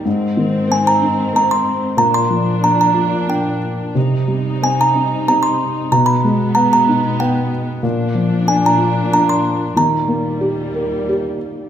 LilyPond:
<<
  \new Staff \with { instrumentName = "Music box" } { \time 3/4 \key bes \mixolydian \tempo 4 = 93 r4 aes''16 bes''8. bes''16 c'''8. | bes''16 c'''8. bes''16 bes''8. g''8. r16 | r4 aes''16 bes''8. bes''16 c'''8. | bes''16 ces'''8. bes''16 bes''8. g''8. r16 |
r4 aes''16 bes''8. bes''16 c'''8. | bes''2 r4 | }
  \new Staff \with { instrumentName = "Felt piano" } { \time 3/4 \key bes \mixolydian aes,8 ees8 c'8 ees'8 c'4 | bes,8 f8 d'8 f'8 d'4 | c8 g8 c'8 ees'8 c'4 | ces8 aes8 ces'8 ees'8 ces'4 |
bes,8 f8 d'8 f'8 d'4 | ees8 bes8 g'8 bes'8 g'4 | }
  \new Staff \with { instrumentName = "String section" } { \clef bass \time 3/4 \key bes \mixolydian <aes, ees c'>2. | <bes, f d'>2. | <c g ees'>2. | <ces aes ces'>2. |
<bes, f d'>2. | <ees, bes, g>2. | }
>>